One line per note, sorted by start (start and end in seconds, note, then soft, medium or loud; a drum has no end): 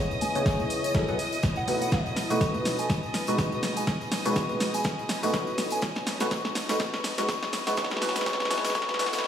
0.00 0.33 C#2 medium
0.00 0.32 C#3 medium
0.00 0.32 B3 medium
0.00 0.32 E4 medium
0.00 1.92 E4 medium
0.00 0.32 G#4 medium
0.00 0.32 C#5 medium
0.00 0.37 D#5 medium
0.00 9.24 D#5 medium
0.00 9.24 D#6 medium
0.11 tambourine soft
0.21 0.36 G#5 medium
0.21 open hi-hat loud
0.21 high conga medium
0.21 shaker medium
0.35 0.93 C#2 medium
0.35 0.92 C#3 loud
0.35 0.92 B3 medium
0.35 0.92 E4 medium
0.35 0.92 G#4 medium
0.35 0.92 C#5 loud
0.35 closed hi-hat medium
0.35 tambourine medium
0.35 shaker soft
0.46 kick loud
0.46 snare medium
0.46 closed hi-hat soft
0.46 tambourine medium
0.46 shaker soft
0.59 tambourine soft
0.59 high conga medium
0.70 open hi-hat loud
0.70 shaker medium
0.84 closed hi-hat medium
0.84 tambourine medium
0.84 shaker soft
0.94 1.06 F#1 loud
0.94 1.06 F#3 medium
0.94 1.06 B3 medium
0.94 1.06 G#4 medium
0.94 1.06 A4 medium
0.94 1.06 E5 loud
0.94 kick loud
0.94 snare medium
0.94 closed hi-hat soft
0.94 tambourine medium
0.94 shaker soft
1.08 1.16 F#1 loud
1.08 1.18 F#3 medium
1.08 1.18 B3 medium
1.08 1.18 G#4 medium
1.08 1.18 A4 medium
1.08 1.18 F#5 medium
1.08 tambourine soft
1.19 2.90 A5 medium
1.19 open hi-hat loud
1.19 shaker medium
1.32 open hi-hat medium
1.32 tambourine medium
1.32 shaker soft
1.39 3.30 B4 medium
1.39 tambourine medium
1.43 kick loud
1.43 snare medium
1.43 closed hi-hat medium
1.43 shaker soft
1.56 1.64 F#5 medium
1.56 tambourine soft
1.68 1.92 B1 loud
1.68 1.92 B2 medium
1.68 1.92 A3 medium
1.68 1.92 D#4 medium
1.68 1.92 F#4 medium
1.68 1.92 B4 medium
1.68 1.77 F#5 medium
1.68 open hi-hat loud
1.68 high conga medium
1.68 shaker medium
1.82 1.92 F#5 medium
1.82 closed hi-hat medium
1.82 tambourine medium
1.82 shaker soft
1.92 kick loud
1.92 snare medium
1.92 closed hi-hat medium
1.92 tambourine medium
1.92 shaker soft
2.06 tambourine soft
2.16 snare medium
2.16 open hi-hat loud
2.16 shaker medium
2.30 2.85 B1 medium
2.30 2.87 B2 medium
2.30 2.87 A3 medium
2.30 2.87 D#4 medium
2.30 2.87 F#4 medium
2.30 2.87 B4 loud
2.30 2.41 C#6 medium
2.30 closed hi-hat medium
2.30 tambourine medium
2.30 shaker soft
2.41 kick loud
2.41 snare medium
2.41 closed hi-hat soft
2.41 tambourine medium
2.41 shaker soft
2.54 tambourine soft
2.54 high conga medium
2.65 snare medium
2.65 open hi-hat loud
2.65 shaker medium
2.79 2.86 G#5 medium
2.79 closed hi-hat medium
2.79 tambourine medium
2.79 shaker soft
2.90 5.82 E3 medium
2.90 kick loud
2.90 snare medium
2.90 closed hi-hat medium
2.90 tambourine medium
2.90 shaker soft
3.03 tambourine soft
3.07 4.28 G#5 medium
3.14 snare medium
3.14 open hi-hat loud
3.14 shaker medium
3.27 3.83 E1 loud
3.27 3.85 B2 medium
3.27 3.85 G#3 medium
3.27 3.85 D#4 medium
3.27 3.85 F#4 medium
3.27 3.85 B4 loud
3.27 3.39 C#6 medium
3.27 closed hi-hat medium
3.27 tambourine medium
3.27 shaker soft
3.38 kick loud
3.38 snare medium
3.38 closed hi-hat medium
3.38 tambourine medium
3.38 shaker soft
3.52 tambourine soft
3.63 snare medium
3.63 open hi-hat loud
3.63 high conga medium
3.63 shaker medium
3.77 3.84 G#5 medium
3.77 closed hi-hat medium
3.77 tambourine medium
3.77 shaker soft
3.87 kick loud
3.87 snare medium
3.87 closed hi-hat medium
3.87 shaker soft
4.01 5.25 C#5 medium
4.01 tambourine soft
4.12 5.25 B5 medium
4.12 snare medium
4.12 open hi-hat loud
4.12 shaker medium
4.25 4.80 C#2 loud
4.25 4.82 B2 medium
4.25 4.82 G#3 medium
4.25 4.82 D#4 medium
4.25 4.82 F#4 medium
4.25 4.82 B4 loud
4.25 4.36 C#6 medium
4.25 closed hi-hat medium
4.25 tambourine medium
4.25 shaker soft
4.36 kick loud
4.36 snare medium
4.36 closed hi-hat soft
4.36 tambourine medium
4.36 shaker soft
4.49 tambourine soft
4.49 high conga medium
4.60 snare medium
4.60 open hi-hat loud
4.60 shaker medium
4.74 4.81 G#5 medium
4.74 closed hi-hat medium
4.74 tambourine medium
4.74 shaker soft
4.84 kick loud
4.84 snare medium
4.84 closed hi-hat medium
4.84 tambourine medium
4.84 shaker soft
4.99 tambourine soft
5.09 snare medium
5.09 open hi-hat loud
5.09 shaker medium
5.23 5.78 F#1 loud
5.23 5.80 B2 medium
5.23 5.80 A3 medium
5.23 5.80 D#4 medium
5.23 5.80 F#4 medium
5.23 5.80 B4 loud
5.23 7.20 B4 medium
5.23 5.34 C#6 medium
5.23 open hi-hat medium
5.23 tambourine medium
5.23 shaker soft
5.29 6.80 A5 medium
5.34 kick loud
5.34 snare medium
5.34 closed hi-hat medium
5.34 tambourine medium
5.34 shaker soft
5.47 tambourine soft
5.58 snare medium
5.58 open hi-hat loud
5.58 high conga medium
5.58 shaker medium
5.70 5.79 G#5 medium
5.70 closed hi-hat medium
5.70 tambourine medium
5.70 shaker soft
5.82 kick loud
5.82 snare medium
5.82 closed hi-hat medium
5.82 tambourine medium
5.82 shaker soft
5.96 snare medium
5.96 tambourine soft
6.07 snare medium
6.07 open hi-hat loud
6.07 shaker medium
6.20 6.27 B1 medium
6.20 6.29 B2 loud
6.20 6.29 A3 medium
6.20 6.29 D#4 medium
6.20 6.29 F#4 medium
6.20 6.29 B4 loud
6.20 6.30 C#6 medium
6.20 snare medium
6.20 closed hi-hat medium
6.20 tambourine medium
6.20 shaker soft
6.31 kick loud
6.31 snare medium
6.31 closed hi-hat medium
6.31 tambourine medium
6.31 shaker soft
6.45 snare medium
6.45 tambourine soft
6.45 high conga medium
6.55 snare medium
6.55 open hi-hat loud
6.55 shaker medium
6.69 6.76 B1 loud
6.69 6.78 B2 medium
6.69 6.78 A3 medium
6.69 6.78 D#4 medium
6.69 6.78 F#4 medium
6.69 6.78 B4 medium
6.69 6.78 C#6 medium
6.69 snare medium
6.69 closed hi-hat medium
6.69 tambourine medium
6.69 shaker soft
6.80 9.24 E4 medium
6.80 kick loud
6.80 snare medium
6.80 closed hi-hat medium
6.80 tambourine medium
6.80 shaker soft
6.93 snare medium
6.93 tambourine soft
7.04 snare loud
7.04 open hi-hat loud
7.04 shaker medium
7.18 7.27 B2 medium
7.18 7.27 G#3 medium
7.18 7.27 D#4 medium
7.18 7.27 F#4 medium
7.18 7.27 B4 loud
7.18 7.27 C#6 medium
7.18 snare medium
7.18 closed hi-hat medium
7.18 tambourine medium
7.18 shaker soft
7.29 kick loud
7.29 snare loud
7.29 closed hi-hat medium
7.29 tambourine medium
7.29 shaker soft
7.43 snare medium
7.43 tambourine soft
7.53 snare loud
7.53 open hi-hat loud
7.53 high conga medium
7.53 shaker medium
7.67 7.76 B2 medium
7.67 7.76 G#3 medium
7.67 7.76 D#4 medium
7.67 7.76 F#4 medium
7.67 7.76 B4 loud
7.67 7.76 C#6 medium
7.67 snare medium
7.67 closed hi-hat medium
7.67 tambourine medium
7.67 shaker soft
7.77 8.00 C#2 loud
7.77 8.00 B2 loud
7.77 8.00 G#3 medium
7.77 8.00 F#4 medium
7.77 8.00 B4 loud
7.77 7.92 C#6 medium
7.77 kick loud
7.77 snare loud
7.77 closed hi-hat medium
7.77 tambourine medium
7.77 shaker soft
7.84 snare medium
7.90 snare medium
7.90 tambourine soft
7.97 snare medium
8.02 8.24 C#2 loud
8.02 8.25 B2 loud
8.02 8.25 G#3 medium
8.02 8.25 D#4 medium
8.02 8.25 F#4 medium
8.02 8.25 B4 loud
8.02 8.16 C#6 medium
8.02 snare loud
8.02 open hi-hat loud
8.02 high conga medium
8.02 shaker medium
8.09 snare medium
8.16 snare medium
8.16 closed hi-hat medium
8.16 tambourine medium
8.16 shaker soft
8.21 snare medium
8.26 8.49 C#2 loud
8.26 8.49 B2 medium
8.26 8.49 G#3 medium
8.26 8.49 D#4 medium
8.26 8.49 F#4 medium
8.26 8.49 B4 loud
8.26 8.40 C#6 loud
8.26 kick loud
8.26 snare loud
8.26 closed hi-hat medium
8.26 tambourine medium
8.26 shaker soft
8.33 snare medium
8.40 snare medium
8.40 tambourine soft
8.40 high conga medium
8.45 snare medium
8.50 8.73 B2 loud
8.50 8.73 G#3 medium
8.50 8.73 D#4 medium
8.50 8.73 F#4 medium
8.50 8.73 B4 loud
8.50 8.65 C#6 loud
8.50 snare loud
8.50 open hi-hat loud
8.50 shaker medium
8.57 snare medium
8.64 snare medium
8.64 closed hi-hat medium
8.64 tambourine medium
8.64 shaker soft
8.70 snare medium
8.75 8.98 A3 medium
8.75 8.98 D#4 medium
8.75 8.98 F#4 medium
8.75 8.98 B4 loud
8.75 8.89 C#6 loud
8.75 kick loud
8.75 snare loud
8.75 closed hi-hat medium
8.75 tambourine medium
8.75 shaker soft
8.82 snare medium
8.88 snare medium
8.88 tambourine soft
8.94 snare medium
8.99 9.22 B2 medium
8.99 9.22 A3 medium
8.99 9.22 D#4 medium
8.99 9.22 F#4 medium
8.99 9.22 B4 loud
8.99 9.14 C#6 medium
8.99 snare loud
8.99 open hi-hat loud
8.99 shaker medium
9.06 snare medium
9.13 snare loud
9.13 open hi-hat medium
9.13 tambourine medium
9.13 high conga medium
9.13 shaker soft
9.18 snare medium
9.24 snare medium